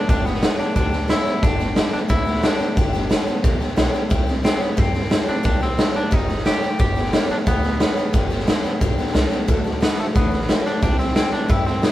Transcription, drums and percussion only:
0.09 kick, snare
0.26 snare
0.34 snare
0.43 snare, hi-hat pedal
0.60 snare
0.76 kick, snare
0.93 snare
1.09 snare, hi-hat pedal
1.26 snare
1.43 kick, snare
1.59 snare
1.76 snare, hi-hat pedal
1.93 snare
2.10 kick, snare
2.27 snare
2.35 snare
2.44 snare, hi-hat pedal
2.60 snare
2.77 kick, snare
2.94 snare
3.11 snare, hi-hat pedal
3.28 snare
3.44 kick, snare
3.61 snare
3.77 snare, hi-hat pedal
3.94 snare
4.11 kick, snare
4.28 snare
4.45 snare, hi-hat pedal
4.62 snare
4.78 kick, snare
4.95 snare
5.03 snare
5.11 snare, hi-hat pedal
5.28 snare
5.45 kick, snare
5.62 snare
5.79 snare, hi-hat pedal
5.95 snare
6.12 kick, snare
6.29 snare
6.37 snare
6.46 snare, hi-hat pedal
6.63 snare
6.80 kick, snare
6.97 snare
7.05 snare
7.13 snare, hi-hat pedal
7.30 snare
7.47 kick, snare
7.64 snare
7.80 snare, hi-hat pedal
7.97 snare
8.14 kick, snare
8.31 snare
8.39 snare
8.48 snare, hi-hat pedal
8.65 snare
8.81 kick, snare
8.98 snare
9.06 snare
9.15 snare, hi-hat pedal
9.32 snare
9.49 kick, snare
9.66 snare
9.82 snare, hi-hat pedal
9.99 snare
10.16 kick, snare
10.33 snare
10.41 snare
10.49 snare, hi-hat pedal
10.66 snare
10.83 kick, snare
10.99 snare
11.08 snare
11.16 snare, hi-hat pedal
11.33 snare
11.50 kick, snare
11.67 snare
11.83 snare, hi-hat pedal

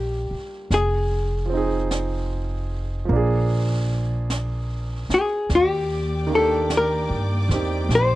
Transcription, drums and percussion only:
0.71 brush sweep, snare
1.91 brush sweep, snare, hi-hat pedal
3.10 brush sweep
4.30 brush sweep, snare, hi-hat pedal
5.10 snare
5.50 brush sweep, snare
6.70 brush sweep, snare, hi-hat pedal
7.51 snare
7.90 brush sweep, snare

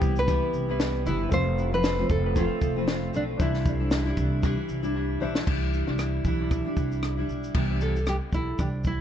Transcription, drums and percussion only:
0.02 kick, shaker
0.16 shaker
0.28 kick, shaker
0.54 shaker
0.80 snare, shaker
1.06 shaker
1.32 kick, shaker
1.58 shaker
1.84 snare, shaker
2.09 kick, shaker
2.36 kick, shaker
2.61 kick, shaker
2.88 snare, shaker
3.14 shaker
3.40 kick, shaker
3.54 snare
3.65 kick, shaker
3.91 snare, shaker
4.17 kick, shaker
4.43 kick, shaker
4.69 shaker
4.83 shaker
5.35 snare
5.47 kick, crash
5.74 shaker
5.99 cross-stick, shaker
6.25 kick, shaker
6.51 kick, shaker
6.77 kick, shaker
6.92 shaker
7.03 cross-stick, shaker
7.29 shaker
7.44 shaker
7.54 kick, crash
7.81 shaker
7.96 shaker
8.06 cross-stick, shaker
8.32 kick, shaker
8.59 kick, shaker
8.84 kick, shaker

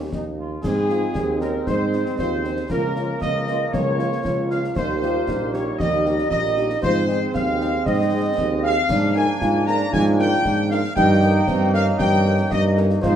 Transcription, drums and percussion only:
0.13 concert bass drum, snare
0.64 concert bass drum, snare, crash
0.90 snare
1.15 concert bass drum, snare
1.41 snare
1.67 concert bass drum, snare
1.93 snare
2.06 snare
2.19 concert bass drum, snare
2.44 snare
2.57 snare
2.70 concert bass drum, snare, crash
2.96 snare
3.22 concert bass drum, snare
3.47 snare
3.74 concert bass drum, snare
3.99 snare
4.12 snare
4.25 concert bass drum, snare
4.51 snare
4.64 snare
4.76 concert bass drum, snare, crash
5.02 snare
5.28 concert bass drum, snare
5.54 snare
5.80 concert bass drum, snare
6.06 snare
6.18 snare
6.31 concert bass drum, snare
6.57 snare
6.70 snare
6.83 concert bass drum, snare, crash
7.09 snare
7.35 concert bass drum, snare
7.61 snare
7.86 concert bass drum, snare
8.38 concert bass drum, snare
8.89 concert bass drum, snare, crash
9.15 snare
9.41 concert bass drum, snare
9.68 snare
9.93 concert bass drum, snare
10.19 snare
10.32 snare
10.45 concert bass drum, snare
10.71 snare
10.84 snare
10.97 concert bass drum, snare, crash
11.22 snare
11.48 concert bass drum, snare
11.74 snare
11.99 concert bass drum, snare
12.25 snare
12.38 snare
12.51 concert bass drum, snare
12.77 snare
12.90 snare
13.03 concert bass drum, snare, crash

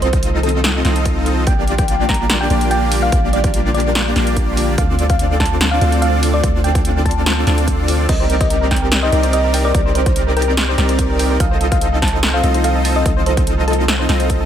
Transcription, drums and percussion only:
0.02 closed hi-hat
0.13 kick, closed hi-hat
0.23 closed hi-hat
0.43 closed hi-hat
0.49 closed hi-hat
0.64 snare, closed hi-hat
0.85 snare, closed hi-hat
0.96 closed hi-hat
1.05 kick, closed hi-hat
1.26 closed hi-hat
1.47 kick, closed hi-hat
1.68 closed hi-hat
1.78 kick, closed hi-hat
1.88 closed hi-hat
2.09 kick, snare, closed hi-hat
2.14 closed hi-hat
2.30 snare, closed hi-hat
2.50 closed hi-hat
2.61 closed hi-hat
2.71 closed hi-hat
2.92 open hi-hat
3.12 kick, closed hi-hat
3.33 closed hi-hat
3.44 kick, closed hi-hat
3.54 closed hi-hat
3.75 closed hi-hat
3.80 closed hi-hat
3.95 snare, closed hi-hat
4.16 snare, closed hi-hat
4.27 closed hi-hat
4.37 kick, closed hi-hat
4.57 open hi-hat
4.78 kick, closed hi-hat
4.99 closed hi-hat
5.10 kick, closed hi-hat
5.19 closed hi-hat
5.40 kick, snare, closed hi-hat
5.46 closed hi-hat
5.61 snare, closed hi-hat
5.81 closed hi-hat
5.92 closed hi-hat
6.02 closed hi-hat
6.23 open hi-hat
6.44 kick, closed hi-hat
6.64 closed hi-hat
6.75 kick, closed hi-hat
6.85 closed hi-hat
7.06 kick, closed hi-hat
7.11 closed hi-hat
7.26 snare, closed hi-hat
7.47 snare, closed hi-hat
7.58 closed hi-hat
7.68 kick, closed hi-hat
7.88 open hi-hat
8.09 kick, closed hi-hat, crash
8.30 closed hi-hat
8.41 kick, closed hi-hat
8.50 closed hi-hat
8.71 kick, snare, closed hi-hat
8.76 closed hi-hat
8.92 snare, closed hi-hat
9.12 closed hi-hat
9.23 closed hi-hat
9.33 closed hi-hat
9.54 open hi-hat
9.75 kick, closed hi-hat
9.95 closed hi-hat
10.06 kick, closed hi-hat
10.16 closed hi-hat
10.37 closed hi-hat
10.42 closed hi-hat
10.57 snare, closed hi-hat
10.78 snare, closed hi-hat
10.89 closed hi-hat
10.99 kick, closed hi-hat
11.19 open hi-hat
11.40 kick, closed hi-hat
11.61 closed hi-hat
11.72 kick, closed hi-hat
11.81 closed hi-hat
12.02 kick, snare, closed hi-hat
12.08 closed hi-hat
12.23 snare, closed hi-hat
12.44 closed hi-hat
12.54 closed hi-hat
12.64 closed hi-hat
12.85 open hi-hat
13.06 kick, closed hi-hat
13.26 closed hi-hat
13.37 kick, closed hi-hat
13.47 closed hi-hat
13.68 closed hi-hat
13.73 closed hi-hat
13.88 snare, closed hi-hat
14.09 snare, closed hi-hat
14.20 closed hi-hat
14.30 kick, closed hi-hat

